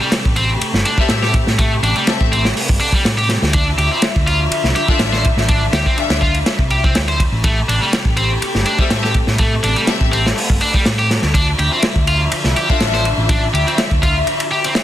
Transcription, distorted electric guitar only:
0.00 0.11 G3 loud
0.36 0.49 C4 loud
0.86 0.97 D4 loud
0.98 1.09 G3 loud
1.23 1.33 G4 medium
1.59 1.71 A3 loud
1.83 1.95 D4 loud
1.96 2.06 G3 loud
2.32 2.44 C4 loud
2.81 2.92 D4 loud
2.94 3.04 G3 medium
3.18 3.28 G4 medium
3.54 3.66 D4 loud
3.78 3.90 G4 loud
3.91 4.01 C4 loud
4.27 4.39 F4 loud
4.76 4.87 G4 loud
4.89 4.99 C4 loud
5.13 5.23 C5 medium
5.49 5.61 D4 loud
5.73 5.85 G4 loud
5.86 5.96 C4 loud
6.22 6.34 F4 loud
6.71 6.83 G4 loud
6.84 6.94 C4 loud
7.08 7.18 C5 medium
7.44 7.56 A3 loud
7.69 7.80 D4 loud
7.81 7.91 G3 loud
8.17 8.29 C4 loud
8.66 8.78 D4 loud
8.79 8.89 G3 loud
9.04 9.14 G4 medium
9.39 9.52 A3 loud
9.64 9.75 D4 loud
9.77 9.87 G3 loud
10.13 10.25 C4 loud
10.62 10.73 D4 loud
10.74 10.84 G3 loud
10.99 11.09 G4 medium
11.34 11.47 D4 loud
11.59 11.71 G4 loud
11.72 11.82 C4 loud
12.08 12.20 F4 loud
12.57 12.68 G4 loud
12.70 12.80 C4 medium
12.94 13.04 C5 medium
13.30 13.42 D4 loud
13.54 13.65 G4 loud
13.67 13.77 C4 loud
14.03 14.15 F4 loud
14.51 14.63 G4 loud
14.65 14.75 C4 loud

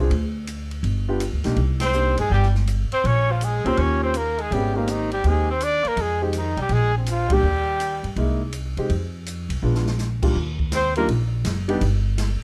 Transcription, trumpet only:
1.85 2.18 C5 medium
2.21 2.31 G#4 medium
2.34 2.47 G4 medium
2.93 3.08 C5 medium
3.07 3.33 C#5 medium
3.32 3.46 F4 medium
3.44 3.69 G#4 medium
3.68 3.83 C5 medium
3.81 4.04 C#5 medium
4.04 4.19 C5 medium
4.17 4.43 A#4 medium
4.41 4.55 G#4 medium
4.54 4.78 G4 medium
4.76 4.92 A#3 medium
4.90 5.12 D#4 medium
5.13 5.29 G4 medium
5.28 5.50 G#4 medium
5.51 5.66 C5 medium
5.64 5.89 D5 loud
5.88 6.03 A#4 medium
6.01 6.23 G#4 medium
6.24 6.40 C4 soft
6.38 6.60 D#4 medium
6.61 6.75 G4 medium
6.73 6.96 G#4 medium
6.98 7.12 C4 soft
7.11 7.35 F4 medium
7.33 8.18 G4 medium
10.76 10.96 C5 medium
10.97 11.08 A#4 medium

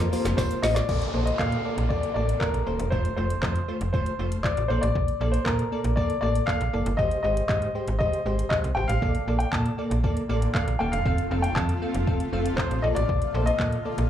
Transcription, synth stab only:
0.12 0.32 A#3 medium
0.12 0.32 F4 medium
0.12 0.32 C5 medium
0.38 0.57 A#3 medium
0.38 0.58 F4 medium
0.38 0.58 C5 loud
0.63 0.83 A#3 medium
0.63 0.83 F4 medium
0.63 0.83 C5 loud
0.89 1.08 A#3 medium
0.89 1.08 A4 medium
0.89 1.09 D5 loud
1.14 1.34 A#3 medium
1.14 1.34 A4 medium
1.14 1.34 C5 medium
1.39 1.59 A#3 medium
1.39 1.59 A4 medium
1.39 1.59 D5 medium
1.65 1.85 A#3 medium
1.65 1.85 A4 medium
1.65 1.85 D5 medium
1.90 2.10 A#3 medium
1.90 2.10 A4 medium
1.90 2.10 D5 loud
2.16 2.35 A#3 medium
2.16 2.36 A4 medium
2.16 2.36 D5 medium
2.41 2.61 A#3 medium
2.41 2.61 A4 medium
2.41 2.61 D5 medium
2.66 2.86 A#3 medium
2.66 2.86 A4 medium
2.66 2.86 C5 medium
2.92 3.12 A3 loud
2.92 3.12 F4 medium
2.92 3.12 C5 loud
3.17 3.37 A3 medium
3.17 3.37 F4 medium
3.17 3.37 C5 medium
3.43 3.62 A3 medium
3.43 3.63 F4 medium
3.43 3.63 C5 medium
3.68 3.88 A3 medium
3.68 3.88 F4 medium
3.68 3.88 C5 medium
3.94 4.13 A3 loud
3.94 4.14 F4 medium
3.94 4.14 C5 loud
4.19 4.39 A3 medium
4.19 4.39 F4 medium
4.19 4.39 C5 medium
4.44 4.64 A3 medium
4.44 4.64 F4 medium
4.44 4.65 C5 medium
4.70 5.11 A#3 medium
4.70 5.11 A4 medium
4.70 5.11 D5 medium
5.21 5.41 A#3 medium
5.21 5.41 A4 medium
5.21 5.41 D5 medium
5.46 5.66 A#3 medium
5.46 5.66 A4 medium
5.46 5.66 C5 medium
5.72 5.91 A#3 medium
5.72 5.92 A4 medium
5.72 5.92 D5 medium
5.97 6.17 A#3 loud
5.97 6.17 A4 medium
5.97 6.17 D5 loud
6.22 6.42 A#3 medium
6.22 6.42 A4 medium
6.22 6.43 D5 medium
6.48 6.68 A#3 medium
6.48 6.68 A4 medium
6.48 6.68 D5 medium
6.73 6.93 A#3 medium
6.73 6.93 A4 medium
6.73 6.93 D5 medium
6.99 7.19 G#3 medium
6.99 7.19 G4 medium
6.99 7.19 C5 loud
7.24 7.44 G#3 medium
7.24 7.44 G4 medium
7.24 7.44 C5 medium
7.49 7.69 G#3 medium
7.49 7.69 G4 medium
7.49 7.69 C5 medium
7.75 7.95 G#3 medium
7.75 7.95 G4 medium
7.75 7.95 C5 medium
8.00 8.20 G#3 loud
8.00 8.20 G4 medium
8.00 8.20 C5 loud
8.26 8.46 G#3 medium
8.26 8.46 G4 medium
8.26 8.46 C5 medium
8.51 8.71 G#3 medium
8.51 8.71 G4 medium
8.51 8.71 C5 medium
8.76 8.96 G#3 medium
8.76 8.96 G4 medium
8.76 8.97 C5 medium
9.02 9.22 A#3 medium
9.02 9.22 A4 medium
9.02 9.22 D5 loud
9.28 9.47 A#3 medium
9.28 9.47 A4 medium
9.28 9.48 D5 medium
9.53 9.73 A#3 medium
9.53 9.73 A4 medium
9.53 9.73 D5 medium
9.78 9.98 A#3 medium
9.78 9.98 A4 medium
9.78 9.98 D5 medium
10.03 10.23 A#3 loud
10.03 10.24 A4 medium
10.03 10.24 D5 loud
10.29 10.49 A#3 medium
10.29 10.49 A4 medium
10.29 10.49 D5 loud
10.55 10.74 A#3 medium
10.55 10.75 A4 medium
10.55 10.75 D5 medium
10.80 11.00 A#3 medium
10.80 11.00 A4 medium
10.80 11.00 F5 medium
11.06 11.25 C4 loud
11.06 11.25 A4 medium
11.06 11.26 F5 loud
11.31 11.51 C4 medium
11.31 11.51 A4 medium
11.31 11.51 F5 medium
11.57 11.76 C4 medium
11.57 11.76 A4 medium
11.57 11.76 F5 medium
11.82 12.02 C4 medium
11.82 12.02 A4 medium
11.82 12.02 F5 medium
12.07 12.27 C4 loud
12.07 12.27 A4 medium
12.07 12.27 F5 loud
12.33 12.52 C4 medium
12.33 12.53 A4 medium
12.33 12.53 F5 loud
12.58 12.78 C4 medium
12.58 12.78 A4 medium
12.58 12.78 F5 medium
12.83 13.24 A#3 medium
12.83 13.24 A4 medium
12.83 13.24 D5 medium
13.34 13.54 A#3 medium
13.34 13.54 A4 medium
13.34 13.54 C5 medium
13.60 13.79 A#3 medium
13.60 13.80 A4 medium
13.60 13.80 D5 medium
13.85 14.05 A#3 medium
13.85 14.05 A4 medium
13.85 14.05 D5 medium

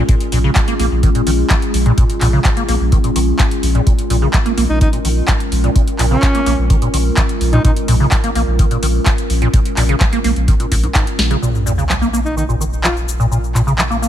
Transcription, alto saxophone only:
4.69 4.77 D#4 medium
4.81 4.89 D#4 medium
6.11 6.58 C#4 medium
7.53 7.60 D#4 medium
7.64 7.72 D#4 medium
12.25 12.33 D#4 medium
12.37 12.45 D#4 medium
12.84 12.95 F4 medium

